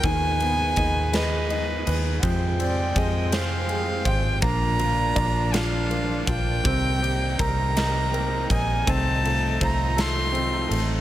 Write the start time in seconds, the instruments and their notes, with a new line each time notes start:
Already playing: brass ensemble F3 D#4
0.03 fingered electric bass D#2, clean electric guitar D#3 B3 D#4 G#4, grand piano D#3, brass ensemble G#4 B4, violin G#5, kick, ride
0.40 grand piano B3, clean electric guitar B3 D#4 G#4, ride
0.76 fingered electric bass D#2, clean electric guitar D#3 B3 D#4 G#4, grand piano D#4, kick, ride
1.13 clean electric guitar D#3 B3 D#4 G#4, grand piano B4, violin D#5, snare, ride
1.50 clean electric guitar D#3 B3 D#4 G#4, grand piano D#4, ride
1.86 fingered electric bass D#2, clean electric guitar B3 D#4 G#4, grand piano B4, ride
2.21 clean electric guitar F2 C3 F3 G#3 C4 G4, fingered electric bass F2, brass ensemble F3 G#3 C4 G5, grand piano F3, kick, ride
2.59 clean electric guitar F3 G#3 C4 G4, grand piano C4, violin D5, ride
2.94 fingered electric bass F2, clean electric guitar F3 G#3 C4 G4, grand piano G#4, violin D#5, kick, ride
3.32 clean electric guitar F2 C3 F3 G#3 C4 G4, grand piano C5, violin F5, snare, ride
3.68 clean electric guitar F3 G#3 C4 G4, grand piano G#4, ride
4.05 fingered electric bass G#1, clean electric guitar F3 G#3 C4 G4, grand piano C5, violin G5, kick, ride
4.42 fingered electric bass A#1, clean electric guitar A#2 F3 A#3 D4 F4, brass ensemble F3 A#3 D4, grand piano A#3, violin A#5, kick, ride
4.79 clean electric guitar A#3 D4 F4, grand piano F4, ride
5.15 fingered electric bass A#1, clean electric guitar F3 A#3 D4 F4, grand piano D5, kick, ride
5.52 clean electric guitar A#2 F3 A#3 D4 F4, grand piano F4, violin F5, snare, ride
5.90 clean electric guitar F3 A#3 D4 F4, grand piano A#3, ride
6.26 fingered electric bass A#1, clean electric guitar A#3 D4 F4, grand piano F4, violin G5, kick, ride
6.63 fingered electric bass C2, clean electric guitar C3 D#3 A#3 C4 G4, brass ensemble C3 G3 D#4, grand piano C4, kick, ride
7.01 clean electric guitar A#3 C4 G4, grand piano G4, ride
7.38 fingered electric bass C2, clean electric guitar D#3 A#3 C4 G4, grand piano A#4, violin A#5, kick, ride
7.75 clean electric guitar C3 D#3 A#3 C4 G4, grand piano D#5, snare, ride
8.13 clean electric guitar D#3 A#3 C4 G4, grand piano A#4, ride
8.50 fingered electric bass A#1, clean electric guitar A#3 C4, grand piano D#5, violin G#5, kick, ride
8.86 fingered electric bass C2, clean electric guitar C3 D#3 A3 D#4 F4, brass ensemble F3 A3, grand piano C4, kick, ride
8.90 violin A5
9.23 clean electric guitar A3 D#4 F4, grand piano A3, ride
9.61 fingered electric bass C2, clean electric guitar D#3 A3 D#4 F4, grand piano C5, violin A#5, kick, ride
9.97 clean electric guitar C3 D#3 A3 D#4 F4, grand piano A4, snare, ride
10.01 violin C6
10.32 clean electric guitar D#3 A3 D#4 F4, grand piano C4, ride
10.69 fingered electric bass A1, clean electric guitar A3 D#4 F4, grand piano A4, ride